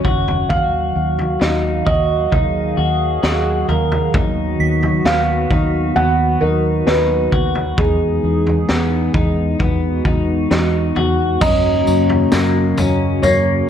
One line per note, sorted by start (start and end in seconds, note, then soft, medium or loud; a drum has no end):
0.00 7.73 D#3 medium
0.00 7.73 F#3 medium
0.00 0.47 C#4 medium
0.00 0.46 F#4 medium
0.00 0.53 C#5 medium
0.05 0.45 F#1 medium
0.05 0.49 F#4 medium
0.05 kick medium
0.05 floor tom medium
0.28 floor tom medium
0.49 0.90 D#2 medium
0.49 2.30 F#4 medium
0.49 1.41 F#4 medium
0.49 4.10 F5 medium
0.49 1.90 F5 medium
0.49 kick medium
0.49 floor tom loud
0.96 1.36 D#2 medium
1.19 floor tom medium
1.41 1.81 D#2 medium
1.41 1.87 D#4 medium
1.41 snare loud
1.86 2.27 D#2 loud
1.86 2.32 F#4 medium
1.86 3.64 D#5 medium
1.86 kick medium
1.86 floor tom medium
2.32 2.72 D#2 medium
2.32 2.77 D#4 medium
2.32 4.12 G#4 medium
2.32 kick medium
2.32 floor tom medium
2.77 3.18 D#2 medium
2.77 3.22 F#4 medium
3.23 3.63 D#2 medium
3.23 3.68 F#4 medium
3.23 snare medium
3.69 4.09 D#2 medium
3.69 4.14 A#4 medium
3.69 floor tom medium
3.92 floor tom medium
4.13 4.54 D#2 medium
4.13 7.74 B3 medium
4.13 5.05 D#4 medium
4.13 7.74 F#4 medium
4.13 kick loud
4.13 floor tom loud
4.60 5.00 D#2 medium
4.60 8.01 B6 medium
4.83 floor tom medium
5.05 5.45 D#2 medium
5.05 5.50 B3 medium
5.05 5.99 F5 medium
5.05 snare loud
5.51 5.91 D#2 medium
5.51 5.96 D#4 medium
5.51 kick medium
5.51 floor tom medium
5.96 6.36 D#2 medium
5.96 6.41 B3 medium
5.96 6.43 F#5 loud
5.96 floor tom soft
6.41 6.82 D#2 medium
6.41 6.86 D#4 medium
6.41 6.88 A#4 medium
6.87 7.27 D#2 medium
6.87 7.33 D#4 medium
6.87 7.80 B4 medium
6.87 snare loud
7.32 7.72 D#2 medium
7.32 7.78 F#4 medium
7.32 kick medium
7.32 floor tom medium
7.55 floor tom medium
7.78 8.18 E2 medium
7.78 11.38 E3 medium
7.78 11.38 G#3 medium
7.78 11.38 B3 medium
7.78 8.69 D#4 medium
7.78 11.38 D#4 medium
7.78 10.92 G#4 medium
7.78 9.58 G#4 medium
7.78 kick loud
7.78 floor tom loud
8.24 8.63 E2 medium
8.47 floor tom medium
8.69 9.09 E2 medium
8.69 9.14 B3 medium
8.69 snare loud
9.14 9.54 E2 medium
9.14 9.59 D#4 medium
9.14 kick medium
9.14 floor tom medium
9.60 10.00 E2 medium
9.60 10.05 B3 medium
9.60 11.40 F#4 medium
9.60 kick medium
9.60 floor tom medium
10.05 10.45 E2 medium
10.05 10.49 D#4 medium
10.05 kick medium
10.51 10.91 E2 medium
10.51 10.96 D#4 medium
10.51 snare loud
10.96 11.36 E2 medium
10.96 11.42 F#4 medium
10.96 floor tom medium
11.41 11.81 F#2 loud
11.41 13.70 C#3 medium
11.41 13.70 F#3 medium
11.41 13.70 A#3 medium
11.41 13.70 C#4 medium
11.41 12.33 C#4 medium
11.41 13.70 F#4 medium
11.41 13.29 D#5 medium
11.41 13.70 A#5 medium
11.41 kick loud
11.41 floor tom loud
11.41 crash loud
11.41 tambourine medium
11.87 12.27 F#2 loud
11.87 tambourine medium
12.09 floor tom medium
12.32 12.73 F#2 medium
12.32 12.78 A#3 medium
12.32 snare loud
12.32 tambourine medium
12.78 13.18 F#2 loud
12.78 13.23 C#4 medium
12.78 floor tom medium
12.78 tambourine medium
13.22 13.63 F#2 loud
13.22 13.69 A#3 medium
13.22 13.70 C#5 medium
13.22 floor tom medium
13.22 tambourine medium